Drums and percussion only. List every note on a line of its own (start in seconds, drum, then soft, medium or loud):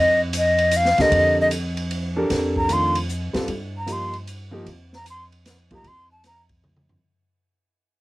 0.33 hi-hat pedal soft
0.33 ride medium
0.58 ride soft
0.71 hi-hat pedal medium
0.71 ride medium
0.85 snare soft
0.98 snare soft
0.98 ride soft
1.12 ride medium
1.51 hi-hat pedal soft
1.51 ride medium
1.77 ride soft
1.91 ride medium
2.30 snare soft
2.30 ride medium
2.56 kick soft
2.69 hi-hat pedal medium
2.69 ride medium
2.95 ride medium
3.09 hi-hat pedal soft
3.34 snare soft
3.34 ride soft
3.48 ride medium
3.87 hi-hat pedal medium
3.87 ride medium
4.13 ride soft
4.27 hi-hat pedal soft
4.27 ride medium
4.66 ride soft
4.93 snare soft
5.06 hi-hat pedal soft
5.06 ride medium
5.32 ride soft
5.45 snare soft
5.45 hi-hat pedal soft
5.45 ride medium
5.70 kick soft
5.70 ride soft
5.84 ride medium
6.24 snare soft
6.24 hi-hat pedal soft
6.24 ride medium
6.49 kick soft
6.49 ride soft
6.64 mid tom soft
6.76 mid tom soft
6.89 floor tom medium